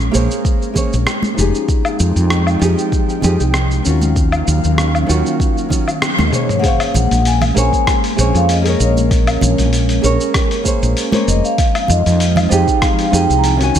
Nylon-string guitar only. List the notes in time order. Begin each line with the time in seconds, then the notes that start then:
Already playing: C5 C#5
0.11 A#3 G#4 C5 C#5
0.73 A#3 G#4 C5 C#5
1.34 F3 D#4
1.39 G4 G#4
2.59 F3 D#4 G4 G#4
3.21 F3 D#4 G4 G#4
3.82 D#3 C#4
3.87 F4 F#4
5.07 D#3 C#4 F4 F#4
5.69 D#3 C#4 F4 F#4
6.30 A#3 G#4 C5 C#5
6.59 A#3 G#4
6.65 C5 C#5
7.54 A#3 G#4 C5 C#5
8.16 A#3 G#4 C5 C#5
8.62 A#3 G#4 A#4
8.69 C#5
10.02 A#3 G#4 A#4 C#5
10.64 A#3 G#4 C5 C#5
11.11 A#3 G#4 C5 C#5
12.49 F3 D#4 G4 G#4
13.11 F3 D#4 G4 G#4
13.56 D#3 C#4
13.61 F#4 G#5